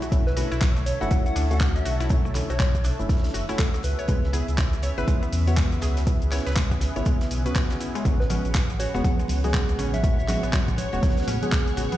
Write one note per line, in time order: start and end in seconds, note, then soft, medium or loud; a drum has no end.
0.00 3.80 D3 medium
0.00 0.05 F#4 medium
0.00 3.80 A4 medium
0.00 3.80 C#5 medium
0.00 8.01 E5 medium
0.00 closed hi-hat medium
0.00 shaker soft
0.12 0.44 B1 loud
0.12 0.25 D3 medium
0.12 0.25 A3 medium
0.12 0.25 C#4 medium
0.12 0.25 E4 medium
0.12 kick loud
0.12 closed hi-hat medium
0.12 shaker soft
0.26 0.33 B4 medium
0.26 snare medium
0.37 0.50 D3 medium
0.37 0.50 A3 medium
0.37 0.50 C#4 medium
0.37 0.50 E4 medium
0.37 0.47 F#4 loud
0.37 0.46 B4 medium
0.37 closed hi-hat medium
0.37 open hi-hat loud
0.37 shaker medium
0.52 0.94 B1 medium
0.52 0.59 E4 loud
0.52 closed hi-hat soft
0.52 shaker soft
0.61 0.68 F#3 loud
0.61 kick loud
0.61 snare loud
0.61 clap loud
0.61 closed hi-hat medium
0.61 shaker soft
0.76 0.79 A3 medium
0.76 closed hi-hat soft
0.76 shaker soft
0.86 0.98 C#5 medium
0.86 closed hi-hat medium
0.86 open hi-hat loud
0.86 shaker medium
1.01 1.08 F#1 medium
1.01 1.48 D3 loud
1.01 1.48 A3 medium
1.01 1.48 C#4 medium
1.01 1.48 E4 loud
1.01 1.04 F#4 medium
1.01 1.07 F#5 medium
1.01 closed hi-hat soft
1.01 shaker soft
1.11 1.15 F#3 loud
1.11 1.21 F#5 medium
1.11 kick loud
1.11 closed hi-hat medium
1.11 shaker soft
1.26 1.48 F#5 loud
1.26 closed hi-hat soft
1.26 shaker soft
1.36 1.80 D2 loud
1.36 1.40 D4 loud
1.36 open hi-hat medium
1.36 open hi-hat loud
1.36 shaker medium
1.50 2.08 D3 medium
1.50 2.08 A3 medium
1.50 2.08 C#4 medium
1.50 2.08 F#4 loud
1.50 1.72 F#5 medium
1.50 closed hi-hat medium
1.50 shaker soft
1.60 kick loud
1.60 snare loud
1.60 clap loud
1.60 closed hi-hat medium
1.60 shaker soft
1.75 1.95 E5 medium
1.75 closed hi-hat soft
1.75 shaker soft
1.85 2.42 B1 medium
1.85 1.96 F#4 loud
1.85 closed hi-hat medium
1.85 open hi-hat medium
1.85 shaker medium
2.00 2.07 E4 loud
2.00 snare medium
2.00 closed hi-hat medium
2.00 shaker soft
2.09 2.24 D3 medium
2.09 2.17 F#3 loud
2.09 2.24 A3 medium
2.09 2.24 C#4 medium
2.09 2.24 E4 medium
2.09 kick loud
2.09 closed hi-hat medium
2.09 shaker soft
2.25 2.28 A3 medium
2.25 shaker soft
2.35 2.48 D3 medium
2.35 2.48 A3 medium
2.35 2.48 C#4 medium
2.35 2.49 E4 medium
2.35 clap soft
2.35 closed hi-hat medium
2.35 open hi-hat loud
2.35 shaker medium
2.50 2.92 B1 medium
2.50 2.53 F#4 medium
2.50 2.85 C#5 loud
2.50 closed hi-hat soft
2.50 shaker soft
2.60 2.64 F#3 loud
2.60 kick loud
2.60 snare loud
2.60 clap loud
2.60 closed hi-hat medium
2.60 shaker soft
2.75 kick medium
2.75 closed hi-hat soft
2.75 shaker soft
2.84 2.89 D4 loud
2.84 closed hi-hat medium
2.84 open hi-hat medium
2.84 shaker medium
2.99 3.06 F#1 medium
2.99 3.46 D3 loud
2.99 3.46 A3 medium
2.99 3.46 C#4 medium
2.99 3.46 E4 loud
2.99 closed hi-hat soft
2.99 shaker soft
3.09 kick loud
3.09 snare loud
3.09 closed hi-hat medium
3.09 shaker soft
3.17 snare medium
3.17 closed hi-hat medium
3.23 snare medium
3.23 closed hi-hat medium
3.23 closed hi-hat soft
3.23 shaker soft
3.29 snare medium
3.29 closed hi-hat medium
3.34 3.44 F#1 medium
3.34 3.45 F#4 loud
3.34 snare loud
3.34 closed hi-hat medium
3.34 open hi-hat loud
3.34 shaker medium
3.49 3.83 D3 medium
3.49 3.83 A3 medium
3.49 3.83 C#4 medium
3.49 3.56 E4 loud
3.49 3.83 F#4 loud
3.49 snare soft
3.49 closed hi-hat medium
3.49 shaker soft
3.59 3.66 F#3 loud
3.59 3.68 A4 medium
3.59 kick loud
3.59 snare loud
3.59 clap loud
3.59 closed hi-hat medium
3.59 shaker soft
3.74 3.77 A3 medium
3.74 3.80 A4 medium
3.74 snare soft
3.74 closed hi-hat soft
3.74 shaker soft
3.83 3.94 C#2 loud
3.83 11.97 C#4 medium
3.83 11.97 G#4 medium
3.83 4.33 B4 loud
3.83 11.97 B4 medium
3.83 closed hi-hat medium
3.83 open hi-hat medium
3.83 shaker medium
3.99 4.01 C#5 medium
3.99 closed hi-hat medium
3.99 shaker soft
4.08 4.41 C#2 loud
4.08 4.22 C#3 medium
4.08 4.13 G#3 loud
4.08 4.22 B3 medium
4.08 4.22 E4 medium
4.08 kick loud
4.08 closed hi-hat medium
4.08 shaker soft
4.24 snare medium
4.33 4.47 C#3 medium
4.33 4.47 B3 medium
4.33 4.47 E4 medium
4.33 4.37 G#4 loud
4.33 closed hi-hat medium
4.33 open hi-hat loud
4.33 shaker medium
4.48 4.90 C#2 medium
4.48 closed hi-hat soft
4.48 shaker soft
4.58 kick loud
4.58 snare loud
4.58 clap loud
4.58 closed hi-hat medium
4.58 shaker soft
4.73 closed hi-hat soft
4.73 shaker soft
4.83 4.93 C#5 loud
4.83 closed hi-hat medium
4.83 open hi-hat medium
4.83 shaker medium
4.98 5.05 G#1 medium
4.98 5.44 C#3 loud
4.98 5.44 B3 medium
4.98 5.45 E4 loud
4.98 5.05 B4 loud
4.98 closed hi-hat soft
4.98 shaker soft
5.08 5.15 G#3 loud
5.08 kick loud
5.08 closed hi-hat medium
5.08 shaker soft
5.22 5.25 B3 medium
5.22 closed hi-hat soft
5.22 shaker soft
5.32 5.77 E2 loud
5.32 open hi-hat medium
5.32 open hi-hat loud
5.32 shaker medium
5.47 6.04 C#3 medium
5.47 6.05 B3 medium
5.47 6.05 F#4 loud
5.47 5.50 C#5 medium
5.47 closed hi-hat medium
5.47 shaker soft
5.57 5.61 G#3 loud
5.57 kick loud
5.57 snare loud
5.57 clap loud
5.57 closed hi-hat loud
5.57 closed hi-hat medium
5.57 shaker soft
5.72 closed hi-hat soft
5.72 shaker soft
5.82 6.39 C#2 medium
5.82 5.86 G#4 loud
5.82 snare loud
5.82 closed hi-hat medium
5.82 open hi-hat medium
5.82 shaker medium
5.97 snare loud
5.97 closed hi-hat medium
5.97 shaker soft
6.07 6.20 C#3 medium
6.07 6.20 B3 medium
6.07 6.20 E4 medium
6.07 kick loud
6.07 closed hi-hat medium
6.07 shaker soft
6.22 closed hi-hat soft
6.22 shaker soft
6.31 6.45 C#3 medium
6.31 6.45 B3 medium
6.31 6.45 E4 medium
6.31 6.42 C#5 loud
6.31 snare medium
6.31 clap soft
6.31 closed hi-hat medium
6.31 open hi-hat loud
6.31 shaker medium
6.39 snare medium
6.39 closed hi-hat medium
6.46 6.89 C#2 medium
6.46 6.53 B4 loud
6.46 snare medium
6.46 closed hi-hat soft
6.46 closed hi-hat medium
6.46 shaker soft
6.50 snare medium
6.50 closed hi-hat medium
6.56 6.63 G#3 loud
6.56 kick loud
6.56 snare loud
6.56 clap loud
6.56 closed hi-hat medium
6.56 shaker soft
6.71 6.74 B3 medium
6.71 kick medium
6.71 closed hi-hat soft
6.71 shaker soft
6.81 snare loud
6.81 closed hi-hat medium
6.81 open hi-hat medium
6.81 shaker medium
6.96 7.03 G#1 medium
6.96 7.43 C#3 loud
6.96 7.43 B3 medium
6.96 7.43 E4 loud
6.96 6.99 C#5 medium
6.96 closed hi-hat soft
6.96 shaker soft
7.05 7.10 G#3 loud
7.05 kick loud
7.05 closed hi-hat medium
7.05 shaker soft
7.21 snare loud
7.21 closed hi-hat soft
7.21 closed hi-hat medium
7.21 shaker soft
7.31 7.47 B1 medium
7.31 open hi-hat loud
7.31 shaker medium
7.46 7.53 C#2 medium
7.46 8.03 C#3 medium
7.46 8.03 B3 medium
7.46 8.03 F#4 loud
7.46 7.50 B4 medium
7.46 closed hi-hat medium
7.46 shaker soft
7.55 7.66 B4 medium
7.55 kick loud
7.55 clap loud
7.55 closed hi-hat medium
7.55 shaker soft
7.70 7.75 C#4 medium
7.70 snare loud
7.70 closed hi-hat medium
7.70 closed hi-hat soft
7.70 shaker soft
7.80 7.87 E4 medium
7.80 open hi-hat medium
7.80 shaker medium
7.95 8.02 G#3 loud
7.95 closed hi-hat medium
7.95 shaker soft
8.05 8.37 A1 loud
8.05 8.19 C#3 medium
8.05 8.09 F#3 loud
8.05 8.19 G#3 medium
8.05 8.19 B3 medium
8.05 8.19 F#4 medium
8.05 11.97 C#5 medium
8.05 11.97 F#5 medium
8.05 11.97 C#6 medium
8.05 kick loud
8.05 closed hi-hat medium
8.05 low conga loud
8.05 shaker soft
8.20 8.26 B4 medium
8.20 snare medium
8.30 8.43 C#3 medium
8.30 8.43 G#3 medium
8.30 8.43 B3 medium
8.30 8.34 C#4 loud
8.30 8.44 F#4 medium
8.30 8.40 B4 medium
8.30 closed hi-hat medium
8.30 open hi-hat loud
8.30 high conga loud
8.30 shaker medium
8.45 8.87 A1 medium
8.45 closed hi-hat soft
8.45 shaker soft
8.55 kick loud
8.55 snare loud
8.55 clap loud
8.55 closed hi-hat medium
8.55 shaker soft
8.70 closed hi-hat soft
8.70 high conga medium
8.70 shaker soft
8.79 8.90 F#4 loud
8.79 8.91 C#5 medium
8.79 closed hi-hat medium
8.79 open hi-hat medium
8.79 shaker medium
8.94 9.01 E1 medium
8.94 9.41 C#3 loud
8.94 9.41 G#3 medium
8.94 9.01 B3 medium
8.94 9.41 B3 medium
8.94 9.41 F#4 loud
8.94 9.01 F#5 medium
8.94 closed hi-hat soft
8.94 shaker soft
9.04 9.11 F#3 loud
9.04 9.14 F#5 medium
9.04 kick loud
9.04 closed hi-hat medium
9.04 high conga loud
9.04 shaker soft
9.19 9.22 G#3 medium
9.19 closed hi-hat soft
9.19 shaker soft
9.28 9.74 C#2 loud
9.28 open hi-hat loud
9.28 open hi-hat medium
9.28 muted conga medium
9.28 shaker medium
9.44 10.01 C#3 medium
9.44 10.01 G#3 medium
9.44 10.01 B3 medium
9.44 9.47 F#4 medium
9.44 10.01 G#4 loud
9.44 closed hi-hat medium
9.44 high conga medium
9.44 shaker soft
9.53 9.58 F#3 medium
9.53 kick loud
9.53 snare loud
9.53 clap loud
9.53 closed hi-hat medium
9.53 shaker soft
9.69 closed hi-hat soft
9.69 muted conga medium
9.69 shaker soft
9.78 10.36 A1 medium
9.78 9.83 C#4 loud
9.78 closed hi-hat medium
9.78 open hi-hat medium
9.78 low conga medium
9.78 shaker medium
9.94 10.00 E5 medium
9.94 snare medium
9.94 closed hi-hat medium
9.94 high conga medium
9.94 shaker soft
10.04 10.17 C#3 medium
10.04 10.17 G#3 medium
10.04 10.17 B3 medium
10.04 10.17 F#4 medium
10.04 10.13 E5 medium
10.04 kick loud
10.04 closed hi-hat medium
10.04 low conga loud
10.04 shaker soft
10.19 10.38 E5 medium
10.19 shaker soft
10.28 10.42 C#3 medium
10.28 10.42 G#3 medium
10.28 10.42 B3 medium
10.28 10.39 F#4 loud
10.28 10.42 F#4 medium
10.28 clap soft
10.28 closed hi-hat medium
10.28 open hi-hat loud
10.28 high conga loud
10.28 shaker medium
10.43 10.85 A1 medium
10.43 10.50 B3 medium
10.43 closed hi-hat soft
10.43 shaker soft
10.53 10.60 F#3 loud
10.53 kick loud
10.53 snare loud
10.53 clap loud
10.53 closed hi-hat medium
10.53 closed hi-hat loud
10.53 shaker soft
10.68 10.71 G#3 medium
10.68 kick medium
10.68 closed hi-hat soft
10.68 high conga medium
10.68 shaker soft
10.78 11.48 C#5 loud
10.78 closed hi-hat medium
10.78 open hi-hat loud
10.78 muted conga medium
10.78 shaker medium
10.93 11.00 E1 medium
10.93 11.39 C#3 loud
10.93 11.40 G#3 medium
10.93 11.40 B3 medium
10.93 10.96 F#4 medium
10.93 11.40 F#4 loud
10.93 closed hi-hat soft
10.93 shaker soft
11.02 11.07 F#3 loud
11.02 kick loud
11.02 snare medium
11.02 closed hi-hat medium
11.02 high conga loud
11.02 shaker soft
11.10 snare medium
11.10 closed hi-hat medium
11.17 snare medium
11.17 closed hi-hat medium
11.17 closed hi-hat soft
11.17 shaker soft
11.22 snare loud
11.22 closed hi-hat medium
11.28 11.38 A2 medium
11.28 11.32 C#4 loud
11.28 snare loud
11.28 closed hi-hat medium
11.28 open hi-hat loud
11.28 muted conga medium
11.28 shaker medium
11.42 11.97 C#3 medium
11.42 11.97 G#3 medium
11.42 11.97 B3 medium
11.42 11.97 G#4 loud
11.42 snare soft
11.42 closed hi-hat medium
11.42 high conga medium
11.42 shaker soft
11.52 kick loud
11.52 snare loud
11.52 clap loud
11.52 closed hi-hat medium
11.52 shaker soft
11.67 snare medium
11.67 closed hi-hat soft
11.67 shaker soft
11.77 11.87 A1 loud
11.77 11.88 F#4 loud
11.77 closed hi-hat medium
11.77 open hi-hat loud
11.77 low conga medium
11.77 shaker medium
11.92 11.97 B3 medium
11.92 closed hi-hat medium
11.92 high conga loud
11.92 shaker soft